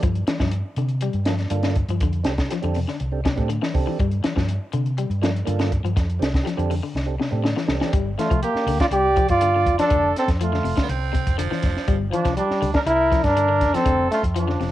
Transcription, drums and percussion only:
0.03 kick, closed hi-hat
0.15 closed hi-hat
0.27 snare, closed hi-hat
0.40 kick, snare
0.51 closed hi-hat
0.76 closed hi-hat
0.89 closed hi-hat
1.01 closed hi-hat
1.13 closed hi-hat
1.25 snare, closed hi-hat
1.39 snare, closed hi-hat
1.50 closed hi-hat
1.63 snare, closed hi-hat
1.76 kick, closed hi-hat
1.89 closed hi-hat
2.01 kick, closed hi-hat
2.13 closed hi-hat
2.24 snare, closed hi-hat
2.38 kick, snare, closed hi-hat
2.50 snare, closed hi-hat
2.63 closed hi-hat
2.74 open hi-hat
2.88 snare
3.00 closed hi-hat
3.25 kick, snare, closed hi-hat
3.37 kick, closed hi-hat
3.50 closed hi-hat
3.63 snare
3.75 kick, open hi-hat
4.00 kick, closed hi-hat
4.12 closed hi-hat
4.24 snare, closed hi-hat
4.37 kick, snare
4.49 closed hi-hat
4.73 closed hi-hat
4.86 closed hi-hat
4.98 closed hi-hat
5.11 closed hi-hat
5.23 snare, closed hi-hat
5.36 closed hi-hat
5.47 closed hi-hat
5.59 snare, closed hi-hat
5.72 kick, closed hi-hat
5.86 closed hi-hat
5.97 kick, snare, closed hi-hat
6.10 closed hi-hat
6.22 snare, closed hi-hat
6.34 kick, snare, closed hi-hat
6.47 snare, closed hi-hat
6.59 closed hi-hat
6.71 open hi-hat
6.96 snare
7.21 snare
7.45 snare
7.57 snare
7.68 snare
7.81 snare
7.93 kick, closed hi-hat
8.19 snare, closed hi-hat
8.31 kick, closed hi-hat
8.43 closed hi-hat
8.56 snare
8.67 open hi-hat
8.80 kick, snare, closed hi-hat
8.91 closed hi-hat
9.16 kick, closed hi-hat
9.28 kick, closed hi-hat
9.41 closed hi-hat
9.66 kick, closed hi-hat
9.79 snare, closed hi-hat
9.90 kick, closed hi-hat
10.16 snare, closed hi-hat
10.28 kick, snare, closed hi-hat
10.41 closed hi-hat
10.54 snare
10.65 open hi-hat
10.77 kick, snare, closed hi-hat
10.89 closed hi-hat
11.14 kick, closed hi-hat
11.27 kick, closed hi-hat
11.39 closed hi-hat
11.52 snare
11.63 kick, snare, closed hi-hat
11.77 snare
11.88 kick, closed hi-hat
12.13 closed hi-hat
12.25 kick, snare, closed hi-hat
12.37 closed hi-hat
12.51 snare
12.62 open hi-hat
12.74 kick, snare, closed hi-hat
12.87 closed hi-hat
13.12 kick, snare, closed hi-hat
13.24 kick, snare, closed hi-hat
13.37 closed hi-hat
13.61 kick, snare, closed hi-hat
13.74 snare, closed hi-hat
13.86 kick, closed hi-hat
14.12 snare, closed hi-hat
14.23 kick, closed hi-hat
14.36 closed hi-hat
14.49 snare
14.61 snare, open hi-hat

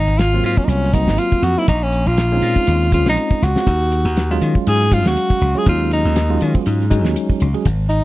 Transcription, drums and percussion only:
0.07 ride
0.19 snare, hi-hat pedal, ride
0.44 hi-hat pedal, ride
0.57 kick
0.69 hi-hat pedal, ride
0.83 snare
0.94 kick, hi-hat pedal, ride
1.07 snare, ride
1.18 hi-hat pedal, ride
1.32 kick
1.43 hi-hat pedal, ride
1.68 kick, hi-hat pedal, ride
1.92 hi-hat pedal, ride
2.06 ride
2.17 snare, hi-hat pedal, ride
2.42 hi-hat pedal, ride
2.56 kick, ride
2.67 hi-hat pedal, ride
2.92 kick, hi-hat pedal, ride
3.06 snare
3.16 hi-hat pedal, ride
3.31 kick
3.41 snare, hi-hat pedal
3.56 snare
3.67 kick, hi-hat pedal, ride
3.92 hi-hat pedal, ride
4.05 ride
4.17 snare, hi-hat pedal, ride
4.41 hi-hat pedal, ride
4.55 kick
4.67 hi-hat pedal, ride
4.81 snare
4.91 kick, hi-hat pedal, ride
5.05 snare, ride
5.17 hi-hat pedal, ride
5.30 kick
5.41 hi-hat pedal, ride
5.66 kick, hi-hat pedal, ride
5.91 hi-hat pedal, ride
6.05 ride
6.16 snare, hi-hat pedal, ride
6.41 hi-hat pedal, ride
6.55 kick, ride
6.66 hi-hat pedal, ride
6.81 snare
6.91 kick, hi-hat pedal, ride
7.05 snare
7.16 hi-hat pedal, ride
7.30 kick
7.40 hi-hat pedal, ride
7.54 ride
7.65 kick, hi-hat pedal, ride
7.90 hi-hat pedal, ride

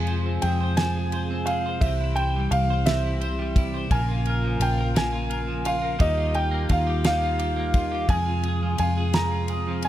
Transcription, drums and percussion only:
0.07 ride
0.42 ride
0.77 snare, ride
1.12 ride
1.47 ride
1.81 kick, ride
2.16 ride
2.52 ride
2.86 snare, ride
3.21 ride
3.56 kick, ride
3.91 kick, ride
4.25 ride
4.61 ride
4.96 snare, ride
5.31 ride
5.65 ride
6.00 kick, ride
6.34 ride
6.69 kick, ride
7.04 snare, ride
7.39 ride
7.74 kick, ride
8.09 kick, ride
8.43 ride
8.78 ride
9.13 snare, ride
9.48 ride
9.82 ride

